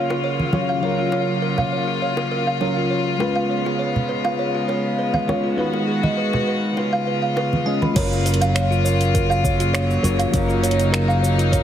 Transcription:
Already playing: string section C#3 F#3 A#3 F4, fm electric piano F#3 C#4 F4 A#4, synth texture F5
0.10 kalimba F4, high bongo
0.24 kalimba C#5
0.40 high conga
0.52 fm electric piano F#3 C#4 F4 C#5, kalimba A#4, high bongo, high conga
0.69 kalimba F5
0.81 fm electric piano F#3 C#4 F4 A#4, kalimba C#5
0.99 kalimba F4
1.12 kalimba C#5, high bongo
1.42 kalimba A#4
1.58 kalimba F5, high bongo, low conga
1.72 kalimba C#5
1.88 kalimba F4
2.02 kalimba C#5
2.17 high bongo
2.31 kalimba A#4
2.47 kalimba F5
2.61 fm electric piano F#3 C#4 F4 A#4, kalimba C#5, high bongo
2.77 kalimba F4
2.90 kalimba C#5
3.19 fm electric piano G#3 C#4 F4 B4, string section G#3 B3, kalimba B4, high bongo
3.35 kalimba F5
3.50 kalimba C#5
3.65 kalimba F4, high bongo
3.79 kalimba C#5
3.96 low conga
4.09 kalimba B4
4.24 kalimba F5, high bongo
4.39 kalimba C#5
4.55 kalimba F4
4.68 kalimba C#5, high bongo
4.99 kalimba B4
5.14 kalimba F5, high conga
5.27 fm electric piano G#3 C#4 F4 C#5, kalimba C#5, high bongo, high conga
5.44 kalimba F4
5.57 string section D#3 F#4, fm electric piano G#3 D#4 F#4 B4, kalimba B4
5.74 high bongo
5.87 kalimba G#4
6.03 kalimba D#5, high conga
6.17 kalimba B4
6.33 kalimba D#4, high bongo, low conga
6.48 kalimba B4
6.77 string section C#3 F4, kalimba B4, high bongo
6.93 kalimba F5
7.07 kalimba B4
7.22 kalimba F5
7.36 kalimba B4, high bongo
7.53 high conga
7.66 fm electric piano G#3 C#4 F4 D#5, kalimba G#5
7.82 kalimba B5, high bongo, high conga
7.94 fingered electric bass F#1, string section C#3 F#3 A#3 F4, fm electric piano F#3 C#4 F4 A#4, kalimba C#5, kick, closed hi-hat, crash, shaker
8.13 shaker
8.25 kalimba A#4, closed hi-hat, shaker
8.34 closed hi-hat
8.41 kalimba F5, closed hi-hat, shaker
8.55 kalimba C#5, finger snap, closed hi-hat, shaker
8.71 kalimba F4, shaker
8.84 kalimba C#5, shaker
9.01 closed hi-hat, shaker
9.14 kalimba A#4, kick, closed hi-hat, shaker
9.30 kalimba F5, shaker
9.44 kalimba C#5, kick, shaker
9.60 kalimba F4, closed hi-hat, shaker
9.73 kalimba C#5, finger snap, closed hi-hat, shaker
9.90 shaker
10.03 fingered electric bass F#1, fm electric piano F#3 C#4 F4 C#5, kalimba A#4, closed hi-hat, shaker
10.19 kalimba F5, closed hi-hat, shaker
10.32 fingered electric bass F#1, fm electric piano F#3 C#4 F4 A#4, string section D#4, kalimba C#5, kick, closed hi-hat, shaker
10.48 kalimba F4, shaker
10.63 kalimba C#5, closed hi-hat, shaker
10.71 closed hi-hat
10.80 closed hi-hat, shaker
10.92 kalimba A#4, finger snap, closed hi-hat, shaker
11.08 kalimba F5, shaker
11.22 kalimba C#5, shaker
11.38 kalimba F4, closed hi-hat, shaker
11.52 kalimba C#5, kick, closed hi-hat, shaker

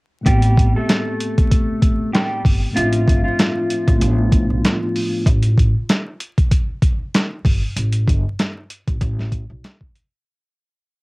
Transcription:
0.21 tine electric piano A2 A3 B3
0.26 upright bass A1, clean electric guitar G3 G4, tine electric piano C4 G4, kick, closed hi-hat
0.42 closed hi-hat
0.58 kick, closed hi-hat
0.76 clean electric guitar A3 A4
0.89 snare, clap, closed hi-hat
1.20 closed hi-hat
1.38 kick, closed hi-hat
1.51 kick, closed hi-hat
1.82 kick, closed hi-hat
2.13 clean electric guitar G3 G4, snare, clap, closed hi-hat
2.45 upright bass G1, kick, open hi-hat
2.71 tine electric piano A2 A3 C4
2.76 upright bass A1, clean electric guitar F3 F4, tine electric piano D4 F4 E5, closed hi-hat
2.93 closed hi-hat
3.08 upright bass G1, kick, closed hi-hat
3.24 clean electric guitar F3 F4
3.39 snare, clap, closed hi-hat
3.70 closed hi-hat
3.88 upright bass A1, kick, closed hi-hat
3.96 tine electric piano A2 A3 B3
4.01 upright bass A1, tine electric piano D4 F4, closed hi-hat
4.32 kick, closed hi-hat
4.50 upright bass B1
4.65 snare, clap, closed hi-hat
4.96 open hi-hat
5.26 upright bass A1, kick, closed hi-hat
5.43 closed hi-hat
5.58 kick, closed hi-hat
5.89 snare, clap, closed hi-hat
6.20 closed hi-hat
6.38 kick, closed hi-hat
6.51 kick, closed hi-hat
6.82 kick, closed hi-hat
7.14 snare, clap, closed hi-hat
7.45 upright bass G1, kick, open hi-hat
7.76 upright bass A1, closed hi-hat
7.93 closed hi-hat
8.08 upright bass G1, kick, closed hi-hat
8.39 snare, clap, closed hi-hat
8.70 closed hi-hat
8.88 upright bass A1, kick, closed hi-hat
9.01 upright bass A1, kick, closed hi-hat
9.20 snare
9.32 kick, closed hi-hat
9.50 upright bass B1
9.64 snare, clap, closed hi-hat
9.81 kick
9.96 closed hi-hat

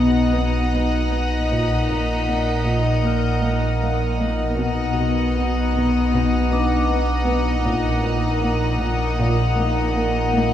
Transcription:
Already playing: double bass section B1, sub bass B1, cello section B2, violin section D#4 D#5 F#5 D#6 F#6 A#6, glass harmonica B4 D#5 F#5, vibraphone F#5, sub drop
0.35 cello section B3
0.73 cello section B3
1.12 cello section B3
1.50 sub bass A#1, double bass section A#1, cello section A#2, glass harmonica A#4
1.61 violin section B6
1.90 cello section A#2
2.18 violin section G6
2.28 cello section A#2
2.67 cello section A#2
3.05 cello section A#2, vibraphone F6
3.44 cello section A#3
3.83 cello section A#3
4.22 cello section A#3
4.59 sub bass B1, double bass section B1, cello section B2, violin section D#4 D#5 F#5, glass harmonica B4 F#5
4.98 cello section B2
5.37 cello section B2
5.75 cello section B2
6.13 cello section B2
6.52 cello section B3, vibraphone D4 D6
6.89 cello section B3
7.28 cello section B3
7.65 sub bass A#1, double bass section A#1, cello section A#2, glass harmonica A#4
8.04 cello section A#2
8.42 cello section A#2
8.81 cello section A#2
9.19 cello section A#2
9.58 cello section A#3
9.96 cello section A#3
10.34 cello section A#3

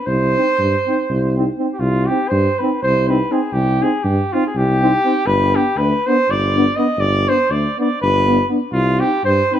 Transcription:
0.06 tuba C2, cornet C5
0.37 trombone C4, euphonium D#4
0.59 tuba G2
0.87 trombone C4, euphonium D#4
1.10 tuba C2
1.37 trombone C4, euphonium D#4
1.58 trombone C4, euphonium D#4
1.73 cornet G4
1.80 tuba C2, cornet F4
2.06 euphonium D#4, cornet G4
2.10 trombone C4
2.29 tuba G2, cornet C5
2.59 trombone C4, euphonium D#4, cornet B4
2.83 tuba C2, cornet C5
3.08 trombone C4, euphonium D#4, cornet B4
3.30 trombone C4, euphonium D#4, cornet G#4
3.53 tuba C2, cornet G4
3.81 trombone C4, euphonium D#4, cornet G#4
4.03 tuba G2, cornet G4
4.33 trombone C4, euphonium D#4, cornet F4
4.47 cornet G#4
4.56 tuba C2, cornet G4
4.82 trombone C4, euphonium D#4
5.05 trombone C4, euphonium D#4
5.26 tuba G1, cornet B4
5.55 trombone B3, euphonium D4, cornet G4
5.76 tuba D2, cornet B4
6.07 trombone B3, euphonium D4, cornet C5
6.28 tuba G1, cornet D5
6.56 trombone B3, euphonium D4
6.76 trombone B3, euphonium D4, cornet D#5
6.97 tuba G1, cornet D5
7.27 trombone B3, euphonium D4, cornet C5
7.50 tuba D2, cornet D5
7.79 trombone B3, euphonium D4, cornet D5
8.02 tuba G1, cornet B4
8.27 trombone B3, euphonium D4
8.49 trombone B3, euphonium D4
8.72 tuba C2, cornet F4
9.00 trombone C4, euphonium D#4, cornet G4
9.24 tuba G2, cornet C5
9.52 trombone C4, euphonium D#4, cornet B4

